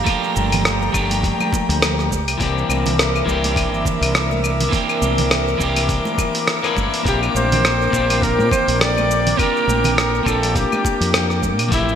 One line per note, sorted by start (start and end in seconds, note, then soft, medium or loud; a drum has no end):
0.00 0.90 F3 medium
0.00 2.07 G4 medium
0.00 2.07 A#5 medium
0.05 0.90 A3 medium
0.05 0.91 A#3 medium
0.05 0.92 D4 medium
0.05 2.09 G5 medium
0.05 kick loud
0.05 open hi-hat soft
0.05 claves medium
0.05 shaker soft
0.10 0.93 G4 medium
0.24 shaker soft
0.36 0.89 G1 medium
0.36 high conga medium
0.36 shaker medium
0.52 open hi-hat medium
0.52 low conga medium
0.52 claves medium
0.52 shaker soft
0.65 cross-stick medium
0.65 open hi-hat soft
0.65 shaker soft
0.82 shaker soft
0.92 1.32 G1 loud
0.92 2.08 F3 medium
0.92 2.09 A3 medium
0.92 2.10 A#3 medium
0.92 kick medium
0.92 claves medium
0.92 shaker medium
0.96 2.10 D4 medium
0.96 2.11 G4 medium
1.11 open hi-hat medium
1.11 muted conga soft
1.11 shaker soft
1.23 kick loud
1.23 open hi-hat soft
1.23 shaker soft
1.40 high conga medium
1.40 claves medium
1.40 shaker soft
1.53 kick loud
1.53 muted conga medium
1.53 shaker medium
1.69 2.28 D2 loud
1.69 open hi-hat medium
1.69 shaker soft
1.82 cross-stick loud
1.82 open hi-hat soft
1.82 claves medium
1.82 shaker soft
1.99 cross-stick soft
1.99 shaker soft
2.11 11.68 A#4 medium
2.11 7.02 E5 medium
2.11 11.68 D6 medium
2.11 kick medium
2.11 high conga medium
2.11 shaker medium
2.28 2.37 C2 medium
2.28 open hi-hat medium
2.28 claves medium
2.28 shaker soft
2.38 2.62 C2 loud
2.38 3.23 E3 medium
2.38 3.24 A#3 medium
2.38 3.25 C4 medium
2.38 3.25 D4 medium
2.38 kick loud
2.38 open hi-hat soft
2.38 shaker soft
2.43 3.26 G4 medium
2.58 shaker soft
2.69 3.22 C2 medium
2.69 high conga medium
2.69 claves medium
2.69 shaker medium
2.86 open hi-hat medium
2.86 low conga loud
2.86 shaker soft
2.99 cross-stick medium
2.99 open hi-hat soft
2.99 shaker soft
3.16 claves medium
3.16 shaker soft
3.25 3.73 C2 loud
3.25 4.68 E3 medium
3.25 4.70 A#3 medium
3.25 4.70 C4 medium
3.25 4.71 D4 medium
3.25 kick medium
3.25 shaker medium
3.31 4.72 G4 medium
3.44 open hi-hat medium
3.44 muted conga soft
3.44 shaker soft
3.56 kick loud
3.56 open hi-hat soft
3.56 claves medium
3.56 shaker soft
3.73 3.82 G1 loud
3.73 shaker soft
3.85 kick loud
3.85 low conga medium
3.85 shaker medium
4.01 4.67 C2 loud
4.01 open hi-hat medium
4.01 claves medium
4.01 shaker soft
4.15 cross-stick loud
4.15 open hi-hat soft
4.15 shaker soft
4.31 high conga medium
4.31 shaker soft
4.44 claves medium
4.44 shaker medium
4.60 open hi-hat medium
4.60 low conga medium
4.60 shaker soft
4.69 5.55 E3 medium
4.69 5.56 A#3 medium
4.69 5.57 C4 medium
4.69 kick loud
4.73 5.58 D4 medium
4.73 5.58 G4 medium
4.73 open hi-hat soft
4.73 shaker soft
4.89 claves medium
4.89 shaker soft
5.02 5.54 C2 medium
5.02 high conga medium
5.02 shaker medium
5.18 open hi-hat medium
5.18 low conga medium
5.18 shaker soft
5.31 cross-stick medium
5.31 open hi-hat soft
5.31 claves medium
5.31 shaker soft
5.48 shaker soft
5.58 5.98 C2 medium
5.58 6.60 E3 medium
5.58 6.60 A#3 medium
5.58 6.61 C4 medium
5.58 kick medium
5.58 shaker medium
5.62 6.62 D4 medium
5.62 6.62 G4 medium
5.76 open hi-hat medium
5.76 muted conga soft
5.76 claves medium
5.76 shaker soft
5.89 kick loud
5.89 open hi-hat soft
5.89 shaker soft
6.05 high conga medium
6.05 shaker soft
6.18 kick loud
6.18 muted conga medium
6.18 claves medium
6.18 shaker medium
6.35 open hi-hat medium
6.35 shaker soft
6.48 cross-stick loud
6.48 open hi-hat soft
6.48 shaker soft
6.63 7.03 E3 medium
6.63 7.02 A#3 medium
6.63 7.03 C4 medium
6.63 7.03 D4 medium
6.63 7.04 E4 medium
6.63 cross-stick soft
6.63 claves medium
6.63 shaker soft
6.77 6.88 G1 medium
6.77 kick medium
6.77 high conga medium
6.77 shaker medium
6.94 open hi-hat medium
6.94 shaker soft
7.03 7.27 A#1 loud
7.03 7.89 A#3 medium
7.03 7.89 C4 medium
7.03 7.90 D4 medium
7.03 11.68 G5 medium
7.03 kick loud
7.03 open hi-hat soft
7.07 7.91 F4 medium
7.07 7.21 G4 medium
7.07 7.92 G4 medium
7.07 shaker soft
7.23 claves medium
7.23 shaker soft
7.35 7.87 A#1 medium
7.35 8.24 C5 loud
7.35 high conga medium
7.35 shaker medium
7.52 open hi-hat medium
7.52 low conga loud
7.52 shaker soft
7.65 cross-stick loud
7.65 open hi-hat soft
7.65 claves medium
7.65 shaker soft
7.82 shaker soft
7.91 8.40 A#1 loud
7.91 9.35 A#3 medium
7.91 9.35 C4 medium
7.91 9.36 D4 medium
7.91 9.37 F4 medium
7.91 kick medium
7.91 shaker medium
7.96 9.37 G4 medium
8.10 open hi-hat medium
8.10 muted conga soft
8.10 claves medium
8.10 shaker soft
8.22 8.50 A#4 loud
8.22 kick loud
8.22 open hi-hat soft
8.22 shaker soft
8.39 8.48 A#2 loud
8.39 shaker soft
8.50 8.82 C5 loud
8.50 kick loud
8.50 low conga medium
8.50 claves medium
8.50 shaker medium
8.68 9.33 A#1 loud
8.68 open hi-hat medium
8.68 shaker soft
8.80 9.41 D5 loud
8.80 cross-stick loud
8.80 open hi-hat soft
8.80 shaker soft
8.98 high conga medium
8.98 claves medium
8.98 shaker soft
9.11 shaker medium
9.27 open hi-hat medium
9.27 low conga medium
9.27 shaker soft
9.37 10.22 A#3 medium
9.37 10.23 C4 medium
9.37 10.24 D4 medium
9.37 10.24 F4 medium
9.37 9.96 A#4 loud
9.37 kick loud
9.37 open hi-hat soft
9.37 claves medium
9.37 shaker soft
9.43 10.25 G4 medium
9.56 shaker soft
9.68 10.20 A#1 medium
9.68 high conga medium
9.68 shaker medium
9.84 open hi-hat medium
9.84 low conga loud
9.84 claves medium
9.84 shaker soft
9.96 10.28 A#4 loud
9.96 cross-stick loud
9.96 open hi-hat soft
9.96 shaker soft
10.15 shaker soft
10.23 10.64 A#1 loud
10.23 11.67 A#3 medium
10.23 11.68 C4 medium
10.23 11.69 D4 medium
10.23 10.57 A4 medium
10.23 kick medium
10.23 claves medium
10.27 11.69 F4 medium
10.27 11.70 G4 medium
10.27 shaker medium
10.43 open hi-hat medium
10.43 muted conga soft
10.43 shaker soft
10.55 11.43 G4 medium
10.55 kick loud
10.55 open hi-hat soft
10.55 shaker soft
10.72 high conga medium
10.72 claves medium
10.72 shaker soft
10.85 kick loud
10.85 muted conga medium
10.85 shaker medium
11.01 11.59 F2 loud
11.01 open hi-hat medium
11.01 shaker soft
11.14 cross-stick loud
11.14 open hi-hat soft
11.14 claves medium
11.14 shaker soft
11.30 cross-stick soft
11.30 shaker soft
11.43 kick medium
11.43 high conga medium
11.43 shaker medium
11.59 11.68 A#2 medium
11.59 open hi-hat medium
11.59 claves medium
11.59 shaker soft
11.68 11.94 A1 loud
11.68 11.95 F3 medium
11.68 11.95 A3 medium
11.68 11.95 C4 medium
11.68 kick loud
11.68 open hi-hat soft
11.73 11.95 E4 medium
11.73 11.95 G4 medium
11.73 11.95 A4 medium
11.73 11.95 E5 medium
11.73 11.95 E6 loud
11.73 shaker medium
11.89 shaker soft